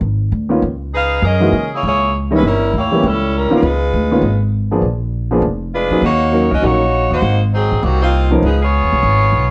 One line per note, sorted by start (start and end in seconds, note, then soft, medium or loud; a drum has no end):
0.01 0.29 G#1 medium
0.32 0.60 D2 medium
0.49 0.60 D#3 medium
0.49 0.60 A#3 medium
0.49 0.60 B3 medium
0.49 0.61 C#4 medium
0.49 0.61 F4 medium
0.62 1.19 C#2 medium
0.94 1.21 D#4 medium
0.94 1.21 G#4 medium
0.94 1.21 B4 medium
0.94 1.21 F5 loud
1.22 1.50 F#2 medium
1.22 1.68 C#4 medium
1.22 1.69 G#4 medium
1.22 1.68 A#4 medium
1.22 1.69 D#5 loud
1.40 1.51 E3 medium
1.40 1.51 G#3 medium
1.40 1.51 A#3 medium
1.40 1.51 D#4 medium
1.40 1.51 F#4 medium
1.52 1.80 C#3 medium
1.74 1.84 A#3 medium
1.74 1.84 E4 medium
1.74 1.84 G#4 medium
1.74 1.84 C#5 medium
1.83 2.40 C#2 medium
1.83 2.12 A#3 medium
1.83 2.12 E4 medium
1.83 2.12 G#4 medium
1.83 2.12 C#5 loud
2.31 2.41 E3 medium
2.31 2.41 G3 medium
2.31 2.42 A#3 medium
2.31 2.42 C#4 medium
2.31 2.42 D#4 medium
2.35 2.44 G#3 medium
2.35 2.44 C#4 medium
2.35 2.44 E4 medium
2.35 2.44 B4 medium
2.43 2.71 G1 medium
2.43 2.73 G3 medium
2.43 2.73 C#4 medium
2.43 2.72 E4 medium
2.43 2.73 A#4 medium
2.73 3.01 D2 medium
2.73 3.03 A#3 medium
2.73 3.03 E4 medium
2.73 3.03 C#5 medium
2.77 3.03 G4 medium
2.92 3.02 E3 medium
2.92 3.02 G3 medium
2.92 3.02 A#3 medium
2.92 3.02 C#4 medium
2.92 3.03 G4 medium
3.03 3.48 C#2 medium
3.03 3.35 G3 medium
3.03 3.34 C#4 medium
3.03 3.34 E4 medium
3.03 3.34 A4 medium
3.36 3.53 G3 medium
3.36 3.53 C#4 medium
3.36 3.53 E4 medium
3.36 3.53 A#4 medium
3.50 3.61 D#3 medium
3.50 3.61 A#3 medium
3.50 3.61 B3 medium
3.50 3.61 C#4 medium
3.50 3.62 F4 medium
3.50 muted upright bass stroke soft
3.55 4.39 G#3 medium
3.55 4.39 D#4 medium
3.55 4.39 F4 medium
3.55 4.39 B4 medium
3.62 3.90 C#2 medium
3.93 4.21 D2 medium
4.11 4.22 D#3 medium
4.11 4.22 A#3 medium
4.11 4.22 B3 medium
4.11 4.22 C#4 medium
4.11 4.22 F4 medium
4.22 4.79 G#1 medium
4.71 4.82 F3 medium
4.71 4.82 A#3 medium
4.71 4.82 B3 medium
4.71 4.82 D4 medium
4.71 4.82 G#4 medium
4.82 5.39 A#1 medium
5.31 5.41 F3 medium
5.31 5.42 A#3 medium
5.31 5.42 B3 medium
5.31 5.42 D4 medium
5.31 5.42 G#4 medium
5.42 5.87 F1 medium
5.74 6.01 G#3 medium
5.74 6.01 D4 medium
5.74 6.02 F4 medium
5.74 6.01 B4 medium
5.91 6.01 E2 medium
5.91 6.02 F#3 medium
5.91 6.02 A#3 medium
5.91 6.02 C#4 medium
5.91 6.02 D#4 medium
5.91 6.02 G#4 medium
6.02 6.47 D#2 medium
6.02 6.48 A#3 medium
6.02 6.48 D#4 medium
6.02 6.48 F#4 medium
6.02 6.48 C#5 loud
6.32 6.49 F#3 medium
6.32 6.49 A#3 medium
6.32 6.50 C#4 medium
6.32 6.50 D#4 medium
6.32 6.50 A#4 medium
6.51 6.62 C#2 medium
6.51 6.63 C#4 medium
6.51 6.63 F#4 medium
6.51 6.63 A#4 medium
6.51 6.63 D#5 medium
6.62 7.08 A#1 medium
6.62 6.79 F#3 medium
6.62 6.79 A#3 soft
6.62 7.11 A#3 medium
6.62 6.79 C#4 soft
6.62 6.79 D#4 soft
6.62 7.11 D#4 medium
6.62 6.80 F#4 medium
6.62 7.12 F#4 medium
6.62 7.12 C#5 loud
7.11 7.21 D#2 medium
7.11 7.40 A#3 medium
7.11 7.40 D#4 medium
7.11 7.40 F#4 medium
7.11 7.40 C5 loud
7.22 7.68 G#1 medium
7.54 7.81 F#3 medium
7.54 7.81 C4 medium
7.54 7.81 D#4 medium
7.54 7.81 G#4 medium
7.71 7.82 A1 medium
7.83 8.40 C2 medium
7.83 8.02 D#3 medium
7.83 8.02 A#3 medium
7.83 8.01 C4 medium
7.83 8.02 F#4 medium
8.02 8.30 A#3 medium
8.02 8.30 C4 medium
8.02 8.30 D#4 medium
8.02 8.30 F4 medium
8.31 8.41 F3 medium
8.31 8.42 B3 medium
8.31 8.42 C#4 medium
8.31 8.42 D#4 medium
8.31 8.42 A#4 medium
8.43 8.80 C#2 medium
8.43 8.60 F3 medium
8.43 8.61 B3 medium
8.43 8.61 D#4 medium
8.43 8.61 G#4 medium
8.62 9.51 B3 medium
8.62 9.51 F4 medium
8.62 9.51 G#4 medium
8.62 9.51 C#5 loud
8.84 8.92 D#2 medium
8.93 9.02 C2 medium
9.03 9.31 G#1 medium
9.33 9.51 B1 medium